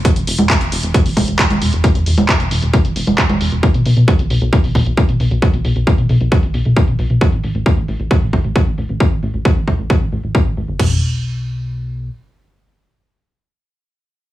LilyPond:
<<
  \new Staff \with { instrumentName = "Analog synth bass" } { \clef bass \time 4/4 \key e \dorian \tempo 4 = 134 r16 e,,16 e,,16 e,,16 r16 e,,16 e,,16 e,,16 r16 e,,16 e,,16 e,,16 r16 e,,16 e,,16 e,,16 | r16 e,,16 e,,16 e,,16 r16 e,,16 e,,16 e,,16 r16 e,,16 e,,16 e,,16 r16 e,,16 e,,16 e,,16 | r16 b,,16 b,,16 b,,16 r16 b,,16 b,,16 b,,16 r16 b,,16 b,,16 b,,16 r16 b,,16 b,,16 b,,16 | r16 b,,16 b,,16 b,,16 r16 b,,16 b,,16 b,,16 r16 b,,16 b,,16 b,,16 r16 b,,16 b,,16 b,,16 |
r16 a,,16 a,,16 a,,16 r16 a,,16 a,,16 a,,16 r16 a,,16 a,,16 a,,16 r16 a,,16 a,,16 a,,16 | r16 a,,16 a,,16 a,,16 r16 a,,16 a,,16 a,,16 r16 a,,16 a,,16 a,,16 r16 a,,16 a,,16 g,,16 | b,,2. r4 | r1 | }
  \new DrumStaff \with { instrumentName = "Drums" } \drummode { \time 4/4 <hh bd>16 hh16 hho16 <cgho hh>16 <hc hh bd>16 hh16 hho16 hh16 <hh bd>16 hho16 <cgho hho bd>16 hh16 <hc hh bd>16 <cgho hh>16 hho16 hh16 | <hh bd>16 hh16 hho16 <cgho hh>16 <hc hh bd>16 hh16 hho16 hh16 <hh bd>16 hh16 hho16 <cgho hh>16 <hc hh bd>16 <cgho hh>16 hho16 hh16 | <hh bd>16 hh16 hho16 hh16 <hh bd>16 hh16 hho16 hh16 <hh bd>16 hho16 <hho bd>16 hh16 <hh bd>16 hh16 hho16 hh16 | <hh bd>16 hh16 hho16 hh16 <hh bd>16 hh16 hho16 hh16 <hh bd>16 hh16 hho16 hh16 <hh bd>16 hh16 hho16 hh16 |
<hh bd>16 hh16 hho16 hh16 <hh bd>16 hh16 hho16 hh16 <hh bd>16 hho16 <hho bd>16 hh16 <hh bd>16 hh16 hho16 hh16 | <hh bd>16 hh16 hho16 hh16 bd16 hh16 <hho bd>16 hh16 <hh bd>16 hh16 hho16 hh16 bd16 hh16 hho16 hh16 | <cymc bd tomfh>4 r4 r4 r4 | r4 r4 r4 r4 | }
>>